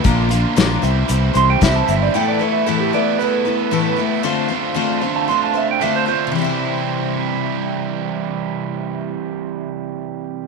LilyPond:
<<
  \new Staff \with { instrumentName = "Electric slide guitar" } { \time 4/4 \key c \major \tempo 4 = 114 a'8 r2 c'''16 g''16 e''16 a''16 e''16 d''16 | g''16 d''16 a'16 e''16 a'16 g'16 d''8 b'2 | r4. r16 a''16 c'''16 a''16 e''16 g''16 e''16 c''16 c''8 | r1 |
r1 | }
  \new Staff \with { instrumentName = "Twelve-string acoustic guitar" } { \time 4/4 \key c \major <bes, f bes d' f' bes'>8 <bes d' f' bes'>8 <bes, f bes d' f' bes'>8 <g c' e' c''>8 <g c' e' c''>8 <g c' e' c''>8 <c e g c' e' c''>8 <g c' e' c''>8 | <a, e a e' a' b'>8 <a e' a' b'>8 <a, e a e' a' b'>8 <a e' a' b'>8 <a e' a' b'>8 <a e' a' b'>8 <a, e a e' a' b'>8 <a e' a' b'>8 | <d a c' f' c''>8 <c' f' c''>8 <d a c' f' c''>8 <c' f' c''>8 <a c' f' c''>8 <c' f' c''>8 <d a c' f' c''>8 <c' f' c''>8 | <c e g c' e' c''>1~ |
<c e g c' e' c''>1 | }
  \new Staff \with { instrumentName = "Overdriven electric guitar" } { \time 4/4 \key c \major <bes, d bes d' f'>8 <bes d' f'>8 <d bes d' f'>8 <c e g c' e'>4. <c e g c' e'>8 <g c' e'>8 | <a, e a b e'>8 <a b e'>8 <e a b e'>8 <a b e'>4. <a, e a b e'>8 <a b e'>8 | <d a d' f'>8 <a d' f'>8 <d a d' f'>8 <a d' f'>4. <d a d' f'>8 <a d' f'>8 | <c e g c' e'>1~ |
<c e g c' e'>1 | }
  \new Staff \with { instrumentName = "Fingered electric bass" } { \clef bass \time 4/4 \key c \major bes,,4 bes,,8 c,8 c,8 c,8 c,8 g,,8 | r1 | r1 | r1 |
r1 | }
  \new DrumStaff \with { instrumentName = "Drums" } \drummode { \time 4/4 <hh bd>8 hh8 <hh sn>8 hh8 hh8 hh8 <hh bd sn>8 hh8 | r4 r4 r4 r4 | r4 r4 r4 r4 | r4 r4 r4 r4 |
r4 r4 r4 r4 | }
>>